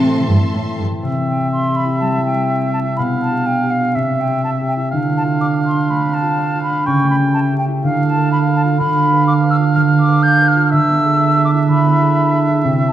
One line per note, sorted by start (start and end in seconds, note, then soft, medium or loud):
0.00 1.05 A2 soft
0.00 0.24 C3 soft
0.00 0.19 E3 soft
0.00 0.74 A3 soft
0.00 0.50 C4 soft
0.00 0.35 C4 soft
0.00 0.52 E4 soft
0.00 0.79 E5 soft
0.00 0.82 A5 soft
0.00 0.79 C6 soft
0.20 0.85 E3 soft
0.28 0.36 G2 soft
0.37 0.68 C4 soft
0.53 0.62 A2 soft
0.53 1.84 E4 soft
0.69 1.18 C4 soft
0.78 0.86 G2 soft
0.86 1.05 E3 soft
1.03 3.00 C3 soft
1.03 2.94 C4 medium
1.03 2.94 E5 soft
1.20 2.17 C4 soft
1.28 1.51 G5 medium
1.36 1.68 G4 soft
1.52 2.49 E5 soft
1.52 1.78 C6 medium
1.69 2.32 G4 soft
1.76 1.99 B5 medium
1.85 2.81 E4 soft
2.00 4.95 G3 soft
2.00 2.24 A5 medium
2.18 3.00 C4 soft
2.25 2.73 G5 medium
2.33 2.65 G4 soft
2.50 3.00 E5 soft
2.66 3.30 G4 soft
2.73 2.79 A5 medium
2.82 3.00 E4 soft
2.97 3.98 B2 soft
2.97 3.98 B3 soft
2.97 3.97 F5 soft
2.97 3.03 B5 medium
3.14 3.97 D4 soft
3.22 3.48 A5 medium
3.31 3.62 G4 soft
3.46 3.97 F5 soft
3.46 3.72 G5 medium
3.63 4.27 G4 soft
3.71 3.97 F5 medium
3.79 3.97 F4 soft
3.95 4.94 C3 soft
3.95 4.93 C4 soft
3.95 4.91 E5 soft
3.95 4.22 E5 medium
4.12 5.07 C4 soft
4.20 4.43 G5 medium
4.28 4.59 G4 soft
4.44 4.94 E5 soft
4.44 4.50 A5 medium
4.61 4.94 G4 soft
4.68 4.74 G5 soft
4.76 4.94 E4 soft
4.91 6.89 D3 medium
4.91 6.89 D4 medium
4.91 6.82 F5 soft
5.09 6.05 C4 soft
5.17 5.23 A5 medium
5.25 5.56 F4 soft
5.41 6.37 D5 soft
5.41 5.47 D6 medium
5.57 6.21 F4 soft
5.66 5.92 C6 medium
5.74 6.70 D4 soft
5.90 7.02 A3 soft
5.90 6.15 B5 medium
6.06 6.89 C4 soft
6.14 6.62 A5 medium
6.22 6.53 F4 soft
6.38 6.89 D5 soft
6.55 6.89 F4 soft
6.63 6.88 B5 medium
6.71 6.89 D4 soft
6.86 7.86 C#3 medium
6.86 7.56 C#4 medium
6.86 7.54 G5 medium
6.86 7.10 C#6 medium
7.03 8.82 A3 soft
7.10 7.16 B5 medium
7.19 7.51 G4 soft
7.34 7.86 E5 soft
7.34 7.40 A5 medium
7.52 7.86 G4 soft
7.59 7.65 G5 medium
7.68 7.86 E4 soft
7.83 8.79 D3 medium
7.83 8.76 D4 medium
7.83 8.07 F5 medium
7.83 8.76 F5 soft
8.00 8.95 D4 soft
8.08 8.31 A5 medium
8.16 8.47 A4 soft
8.32 9.27 F5 soft
8.32 8.38 B5 medium
8.48 8.82 A4 soft
8.56 8.62 A5 medium
8.64 9.58 F4 soft
8.79 9.75 D3 medium
8.79 12.66 D4 medium
8.79 10.68 F5 medium
8.79 9.26 B5 medium
8.96 9.91 D4 soft
9.13 9.43 B4 soft
9.27 10.23 F5 soft
9.27 9.33 D6 medium
9.44 10.07 B4 soft
9.51 9.57 E6 medium
9.60 10.55 F4 soft
9.75 10.71 D3 soft
9.75 9.81 F6 medium
9.92 12.67 D4 soft
9.99 10.24 D6 medium
10.08 10.39 B4 soft
10.23 10.74 F5 medium
10.23 10.50 G6 medium
10.40 12.67 B4 soft
10.48 10.65 F6 medium
10.56 10.74 F4 soft
10.65 10.71 F6 medium
10.72 11.68 D3 medium
10.72 12.93 E5 medium
10.72 11.44 E6 medium
10.89 11.84 B3 soft
11.05 11.36 G#4 soft
11.21 12.16 E5 soft
11.37 12.00 G#4 soft
11.45 11.51 D6 medium
11.53 12.47 E4 soft
11.69 12.67 D3 soft
11.69 12.39 B5 medium
11.85 12.67 B3 soft
12.01 12.31 G#4 soft
12.17 12.93 E5 soft
12.32 12.67 G#4 soft
12.48 12.93 E4 soft
12.65 12.93 C3 medium
12.65 12.93 C4 medium
12.81 12.93 C4 soft
12.88 12.93 A5 medium